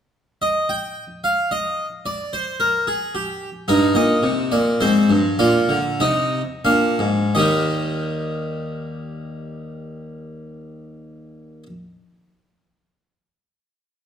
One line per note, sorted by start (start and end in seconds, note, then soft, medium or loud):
0.42 0.68 D#5 loud
0.69 1.03 G5 medium
1.24 1.50 F5 medium
1.51 1.85 D#5 medium
2.06 2.32 D5 loud
2.33 2.59 C5 medium
2.60 2.86 A#4 medium
2.87 3.13 G#4 medium
3.15 3.48 G4 medium
3.68 3.95 G2 medium
3.68 4.77 D#4 medium
3.68 3.95 A#4 loud
3.95 4.22 A#2 medium
3.95 4.30 D#5 medium
4.23 4.50 C3 medium
4.52 4.79 A#2 medium
4.52 4.79 D5 medium
4.81 5.09 G#2 medium
4.81 5.17 C4 medium
4.81 5.17 C5 medium
5.10 5.38 G2 medium
5.39 5.68 A#2 medium
5.39 5.77 F4 medium
5.39 5.77 D5 medium
5.69 5.99 D3 medium
6.00 6.41 C3 medium
6.00 6.41 D#4 medium
6.00 6.41 D#5 medium
6.65 6.98 A#2 medium
6.65 7.08 D4 medium
6.65 7.08 F5 medium
6.99 7.33 G#2 medium
7.35 11.63 D#2 medium
7.35 11.66 D#3 medium
7.35 11.66 G3 medium
7.35 11.64 G4 medium
7.35 11.63 D#5 medium